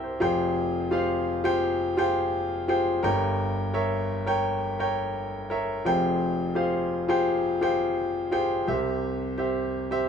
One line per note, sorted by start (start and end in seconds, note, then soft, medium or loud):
0.00 0.17 C2 medium
0.00 0.17 C3 medium
0.00 0.23 E4 medium
0.00 0.20 G4 medium
0.00 0.23 A#4 loud
0.00 0.03 C5 medium
0.00 0.20 C5 medium
0.00 0.23 E5 medium
0.00 0.22 G5 medium
0.00 0.23 A#5 medium
0.20 2.99 F1 medium
0.20 2.99 F2 medium
0.20 0.71 F4 medium
0.20 0.71 G4 medium
0.20 0.72 G#4 medium
0.20 0.72 C5 medium
0.20 0.72 G5 loud
0.91 1.29 F4 medium
0.91 1.29 G4 medium
0.91 1.30 G#4 medium
0.91 1.30 C5 medium
0.91 1.30 F5 medium
1.44 1.82 F4 medium
1.44 1.82 G4 medium
1.44 1.83 G#4 medium
1.44 1.83 C5 medium
1.44 1.83 G5 loud
1.97 2.48 F4 medium
1.97 2.48 G4 medium
1.97 2.48 G#4 medium
1.97 2.48 C5 medium
1.97 2.49 G5 loud
2.68 2.93 F4 medium
2.68 2.93 G4 medium
2.68 2.94 G#4 medium
2.68 2.94 C5 medium
2.68 2.94 G5 medium
3.03 5.81 G1 medium
3.03 5.81 G2 medium
3.03 3.54 A#4 medium
3.03 3.54 C#5 medium
3.03 3.55 G5 loud
3.74 4.12 A#4 medium
3.74 4.12 C#5 medium
3.74 4.12 E5 loud
4.26 4.65 A#4 medium
4.26 4.65 C#5 medium
4.26 4.65 G5 loud
4.79 5.30 A#4 medium
4.79 5.31 C#5 medium
4.79 5.31 G5 loud
5.50 5.75 A#4 medium
5.50 5.76 C#5 medium
5.50 5.76 E5 medium
5.85 8.64 F1 medium
5.85 8.64 F2 medium
5.85 6.36 F4 medium
5.85 6.36 G4 medium
5.85 6.36 G#4 medium
5.85 6.37 C5 medium
5.85 6.37 G5 loud
6.55 6.94 F4 medium
6.55 6.94 G4 medium
6.55 6.94 G#4 medium
6.55 6.94 C5 medium
6.55 6.94 F5 medium
7.08 7.47 F4 medium
7.08 7.47 G4 medium
7.08 7.47 G#4 medium
7.08 7.47 C5 medium
7.08 7.47 G5 loud
7.61 8.12 F4 medium
7.61 8.12 G4 medium
7.61 8.13 G#4 medium
7.61 8.13 C5 medium
7.61 8.13 G5 loud
8.31 8.57 F4 medium
8.31 8.57 G4 medium
8.31 8.58 G#4 medium
8.31 8.58 C5 medium
8.31 8.58 G5 medium
8.67 10.09 C2 medium
8.67 10.09 C3 medium
8.67 9.18 G4 medium
8.67 9.19 C5 medium
8.67 9.19 E5 loud
9.38 9.76 G4 medium
9.38 9.76 C5 medium
9.38 9.77 E5 medium
9.91 10.09 G4 medium
9.91 10.09 C5 medium
9.91 10.09 E5 loud